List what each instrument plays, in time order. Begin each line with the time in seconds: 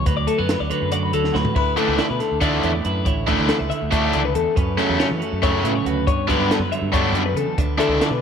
0.06 clean electric guitar D2 F#3 B4, fingered electric bass D2, kick, closed hi-hat
0.17 clean electric guitar D5
0.27 clean electric guitar A3 A4, closed hi-hat
0.38 fingered electric bass F#2, clean electric guitar B3 B4
0.49 snare, closed hi-hat
0.60 fingered electric bass D2, clean electric guitar D5
0.70 clean electric guitar D3 F#3 B4, closed hi-hat
0.82 fingered electric bass F#2
0.92 clean electric guitar F#4 D5, closed hi-hat
1.03 clean electric guitar B4
1.13 fingered electric bass D2, clean electric guitar F#3 A4, closed hi-hat
1.24 snare
1.32 fingered electric bass D2, clean electric guitar A2 F#4 B4, snare
1.45 floor tom
1.54 clean electric guitar D2 E4 B4, fingered electric bass D2, kick, crash
1.77 overdriven electric guitar D3 E3 A3 D4, clean electric guitar A3 A4, closed hi-hat
1.88 fingered electric bass C#2
1.98 clean electric guitar E4 D5, snare, closed hi-hat
2.10 fingered electric bass B2, clean electric guitar B4
2.20 clean electric guitar D3 A4, snare, closed hi-hat
2.31 fingered electric bass D2
2.41 overdriven electric guitar D3 E3 A3 D4, clean electric guitar A3 D5, kick, closed hi-hat
2.63 fingered electric bass E2, clean electric guitar A2 E4 C#5, closed hi-hat
2.73 clean electric guitar D5
2.84 fingered electric bass F#2, clean electric guitar E4 B4, closed hi-hat
3.05 fingered electric bass A1, clean electric guitar D2 E4 C#5, kick, closed hi-hat
3.27 overdriven electric guitar D3 E3 A3 D4, clean electric guitar A3 B4, kick, closed hi-hat
3.40 fingered electric bass D2
3.48 clean electric guitar E4 A4, snare, closed hi-hat
3.59 fingered electric bass C#2, clean electric guitar B4
3.70 clean electric guitar D3 E5, closed hi-hat
3.82 fingered electric bass D2
3.91 overdriven electric guitar D3 E3 A3 D4, clean electric guitar C#5, kick, closed hi-hat
4.12 fingered electric bass C#2, clean electric guitar D2 D5, closed hi-hat
4.25 clean electric guitar B4
4.34 clean electric guitar E2 A4, fingered electric bass E2, closed hi-hat
4.55 clean electric guitar F#2 C#4 B4, fingered electric bass F#2, kick, closed hi-hat
4.77 overdriven electric guitar C#3 F#3 A3 C#4, clean electric guitar A3 A4, snare, closed hi-hat
4.89 fingered electric bass E2
5.00 clean electric guitar C#4 C#5, snare, closed hi-hat
5.10 fingered electric bass E3, clean electric guitar B4
5.20 clean electric guitar F#3 A4, closed hi-hat
5.32 fingered electric bass F#2
5.42 overdriven electric guitar C#3 F#3 A3 C#4, clean electric guitar A3 C#5, kick, closed hi-hat
5.63 fingered electric bass A2, clean electric guitar C#3 C#4 B4, closed hi-hat
5.75 clean electric guitar C#5
5.85 fingered electric bass D2, clean electric guitar F#4 B4, closed hi-hat
6.06 clean electric guitar G2 B3 C#5, fingered electric bass G2, kick, closed hi-hat
6.28 overdriven electric guitar D3 G3 B3 D4, clean electric guitar F#3 B4, kick, closed hi-hat
6.39 fingered electric bass G2
6.50 clean electric guitar B3 A4, snare, closed hi-hat
6.59 fingered electric bass F#2, clean electric guitar B4
6.71 clean electric guitar D3 E5, closed hi-hat
6.82 fingered electric bass G2
6.92 clean electric guitar G2 C#5, overdriven electric guitar D3 G3 B3 D4, kick, closed hi-hat
7.12 fingered electric bass F#2, clean electric guitar F#2 D5, closed hi-hat
7.26 clean electric guitar B4
7.34 clean electric guitar E2 A4, fingered electric bass C#3, closed hi-hat
7.58 clean electric guitar D2 D4 B4, fingered electric bass D2, kick, closed hi-hat
7.78 overdriven electric guitar D3 E3 A3 D4, clean electric guitar A3 A4, closed hi-hat
7.88 fingered electric bass C#2
8.01 clean electric guitar D4 D5, snare, closed hi-hat
8.10 fingered electric bass B2, clean electric guitar B4